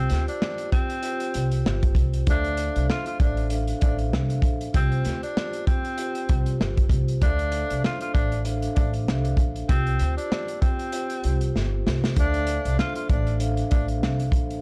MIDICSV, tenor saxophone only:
0, 0, Header, 1, 2, 480
1, 0, Start_track
1, 0, Key_signature, -1, "minor"
1, 0, Tempo, 618557
1, 1762, Time_signature, 4, 2, 24, 8
1, 11342, End_track
2, 0, Start_track
2, 0, Title_t, "Tenor saxophone"
2, 0, Program_c, 0, 66
2, 0, Note_on_c, 0, 60, 111
2, 192, Note_off_c, 0, 60, 0
2, 216, Note_on_c, 0, 62, 85
2, 541, Note_off_c, 0, 62, 0
2, 559, Note_on_c, 0, 60, 91
2, 1250, Note_off_c, 0, 60, 0
2, 1785, Note_on_c, 0, 62, 109
2, 2226, Note_off_c, 0, 62, 0
2, 2245, Note_on_c, 0, 65, 85
2, 2365, Note_off_c, 0, 65, 0
2, 2377, Note_on_c, 0, 65, 68
2, 2472, Note_off_c, 0, 65, 0
2, 2482, Note_on_c, 0, 62, 83
2, 2698, Note_off_c, 0, 62, 0
2, 2958, Note_on_c, 0, 62, 74
2, 3081, Note_off_c, 0, 62, 0
2, 3688, Note_on_c, 0, 60, 101
2, 4037, Note_off_c, 0, 60, 0
2, 4056, Note_on_c, 0, 62, 81
2, 4381, Note_off_c, 0, 62, 0
2, 4398, Note_on_c, 0, 60, 93
2, 5089, Note_off_c, 0, 60, 0
2, 5603, Note_on_c, 0, 62, 105
2, 6054, Note_off_c, 0, 62, 0
2, 6091, Note_on_c, 0, 65, 78
2, 6208, Note_off_c, 0, 65, 0
2, 6217, Note_on_c, 0, 65, 81
2, 6308, Note_off_c, 0, 65, 0
2, 6312, Note_on_c, 0, 62, 93
2, 6533, Note_off_c, 0, 62, 0
2, 6793, Note_on_c, 0, 62, 75
2, 6918, Note_off_c, 0, 62, 0
2, 7517, Note_on_c, 0, 60, 113
2, 7871, Note_off_c, 0, 60, 0
2, 7891, Note_on_c, 0, 62, 82
2, 8219, Note_off_c, 0, 62, 0
2, 8234, Note_on_c, 0, 60, 90
2, 8927, Note_off_c, 0, 60, 0
2, 9462, Note_on_c, 0, 62, 108
2, 9904, Note_off_c, 0, 62, 0
2, 9923, Note_on_c, 0, 65, 81
2, 10044, Note_off_c, 0, 65, 0
2, 10053, Note_on_c, 0, 65, 70
2, 10150, Note_off_c, 0, 65, 0
2, 10159, Note_on_c, 0, 62, 84
2, 10376, Note_off_c, 0, 62, 0
2, 10638, Note_on_c, 0, 62, 73
2, 10761, Note_off_c, 0, 62, 0
2, 11342, End_track
0, 0, End_of_file